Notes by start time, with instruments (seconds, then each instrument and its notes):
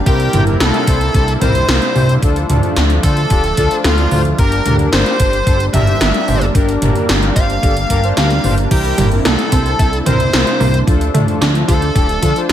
Already playing: analog synth pad G3 D4
0.06 analog synth bass C2, analog synth pad C3 A#3 E4, analog polysynth C4 E4 A#4, lead electric guitar G4, digital synth lead G5, kick, closed hi-hat
0.20 closed hi-hat
0.33 analog synth bass G1, analog polysynth C4 E4 A#4, closed hi-hat, mid tom
0.47 analog polysynth C4 E4 A#4, closed hi-hat
0.60 analog synth bass C2, analog polysynth C4 E4 A#4, lead electric guitar A4, digital synth lead A5, snare, closed hi-hat
0.74 closed hi-hat
0.87 analog synth bass C2, analog polysynth C4 E4 C5, kick, closed hi-hat
1.01 closed hi-hat
1.14 analog synth bass C2, analog polysynth C4 E4 A4, kick, closed hi-hat
1.28 closed hi-hat
1.41 analog synth bass C2, analog polysynth C4 E4 A#4, lead electric guitar C5, digital synth lead C6, kick, closed hi-hat, mid tom
1.55 analog polysynth C4 E4 C5, closed hi-hat
1.69 analog synth bass C2, analog polysynth C4 E4 A#4, snare, closed hi-hat
1.82 closed hi-hat
1.95 analog synth bass C2, analog polysynth C4 E4 C5, mid tom, open hi-hat
2.09 closed hi-hat
2.22 analog synth bass D2, analog synth pad F3 A3 D4, analog polysynth D4 F4 A4, kick, closed hi-hat
2.36 closed hi-hat
2.50 analog synth bass D2, analog polysynth D4 F4 A4, closed hi-hat, mid tom
2.63 analog polysynth D4 F4 A4, closed hi-hat
2.76 analog synth bass D2, analog polysynth D4 F4 A4, snare, closed hi-hat
2.90 closed hi-hat
3.03 analog synth bass D2, analog polysynth D4 F4 C5, lead electric guitar A4, digital synth lead A5, kick, closed hi-hat
3.17 closed hi-hat
3.30 analog synth bass D1, analog polysynth D4 F4 G4, kick, closed hi-hat
3.44 closed hi-hat
3.57 analog synth bass D2, analog polysynth D4 F4 A4, kick, closed hi-hat
3.71 analog polysynth D4 F4 C5, closed hi-hat
3.84 analog synth bass D2, analog polysynth D4 F4 A4, lead electric guitar F4, digital synth lead F5, snare, closed hi-hat
3.98 closed hi-hat
4.11 analog synth bass D2, analog polysynth D4 F4 C5, mid tom, open hi-hat
4.25 closed hi-hat
4.38 analog synth bass G1, analog synth pad G3 A#3, analog polysynth D4 G4 A#4, lead electric guitar A#4, digital synth lead A#5, kick, closed hi-hat
4.52 closed hi-hat
4.66 analog synth bass D2, analog polysynth D4 G4 A#4, closed hi-hat, mid tom
4.79 analog polysynth D4 G4 A#4, closed hi-hat
4.93 analog synth bass G1, analog polysynth D4, lead electric guitar C5, digital synth lead C6, snare, closed hi-hat
5.06 closed hi-hat
5.20 analog synth bass G1, analog polysynth D4 G4 C5, kick, closed hi-hat
5.33 closed hi-hat
5.47 analog synth bass G1, analog polysynth D4 G4 A4, kick, closed hi-hat
5.60 closed hi-hat
5.74 analog synth bass G1, analog polysynth D4 G4 A#4, lead electric guitar E5, digital synth lead E6, kick, closed hi-hat, mid tom
5.87 analog polysynth D4 G4 C5, closed hi-hat
6.01 analog synth bass G1, analog polysynth D4 G4 A#4, snare, closed hi-hat
6.14 closed hi-hat
6.28 analog synth bass G1, analog polysynth D4 G4 C5, mid tom, open hi-hat
6.42 closed hi-hat
6.55 analog synth bass G1, analog polysynth D4 G4 A#4, kick, closed hi-hat
6.69 closed hi-hat
6.82 analog synth bass G1, analog polysynth D4 G4 A#4, closed hi-hat, mid tom
6.95 analog polysynth D4 G4 A#4, closed hi-hat
7.09 analog synth bass G1, analog polysynth D4 G4 A#4, snare, closed hi-hat
7.23 closed hi-hat
7.36 analog synth bass G1, analog polysynth D4 G4 C5, lead electric guitar F5, digital synth lead F6, kick, closed hi-hat
7.50 closed hi-hat
7.63 analog synth bass G1, analog polysynth D4 G4 A4, kick, closed hi-hat
7.77 closed hi-hat
7.90 analog synth bass G1, analog polysynth D4 G4 A#4, kick, closed hi-hat
8.04 analog polysynth D4 G4 C5, closed hi-hat
8.17 analog synth bass D2, analog polysynth D4 G4 A#4, lead electric guitar F5, digital synth lead F6, snare, closed hi-hat
8.30 snare, closed hi-hat
8.44 analog synth bass G1, analog polysynth D4 G4 C5, mid tom, open hi-hat
8.58 closed hi-hat
8.71 analog synth bass C2, analog synth pad C3 E4, synth arpeggio sound E3, analog polysynth C4 E4 A#4, lead electric guitar G4, digital synth lead G5, kick, closed hi-hat, crash
8.85 closed hi-hat
8.98 analog synth bass G1, synth arpeggio sound G3, analog polysynth C4 E4 A#4, closed hi-hat, mid tom
9.12 analog polysynth C4 E4 A#4, closed hi-hat
9.25 analog synth bass C2, synth arpeggio sound A#3, analog polysynth C4 A#4, lead electric guitar A4, digital synth lead A5, snare, closed hi-hat
9.39 closed hi-hat
9.52 analog synth bass C2, synth arpeggio sound C4, analog polysynth C4 E4 C5, kick, closed hi-hat
9.66 closed hi-hat
9.79 analog synth bass C2, analog polysynth C4 E4 A4, synth arpeggio sound E4, kick, closed hi-hat
9.93 closed hi-hat
10.06 analog synth bass C2, synth arpeggio sound E3, analog polysynth C4 E4 A#4, lead electric guitar C5, digital synth lead C6, kick, closed hi-hat, mid tom
10.20 analog polysynth C4 E4 C5, closed hi-hat
10.33 analog synth bass C2, synth arpeggio sound G3, analog polysynth C4 E4 A#4, snare, closed hi-hat
10.47 closed hi-hat
10.60 analog synth bass C2, synth arpeggio sound A#3, analog polysynth C4 E4 C5, mid tom, open hi-hat
10.74 closed hi-hat
10.87 analog synth bass D2, synth arpeggio sound F3, analog synth pad F3 A3, analog polysynth D4 F4 A4, kick, closed hi-hat
11.01 closed hi-hat
11.14 analog synth bass D2, synth arpeggio sound A3, analog polysynth D4 F4 A4, closed hi-hat, mid tom
11.28 analog polysynth D4 F4 A4, closed hi-hat
11.41 analog synth bass D2, synth arpeggio sound D4, analog polysynth D4 F4 A4, snare, closed hi-hat
11.55 closed hi-hat
11.68 analog synth bass D2, analog polysynth D4 F4 C5, synth arpeggio sound F4, lead electric guitar A4, digital synth lead A5, kick, closed hi-hat
11.82 closed hi-hat
11.95 analog synth bass D1, analog polysynth D4 F4 G4, synth arpeggio sound A4, kick, closed hi-hat
12.09 closed hi-hat
12.22 analog synth bass D2, synth arpeggio sound F3, analog polysynth D4 F4 A4, kick, closed hi-hat
12.36 analog polysynth D4 F4 C5, closed hi-hat
12.49 digital synth lead F5, snare, closed hi-hat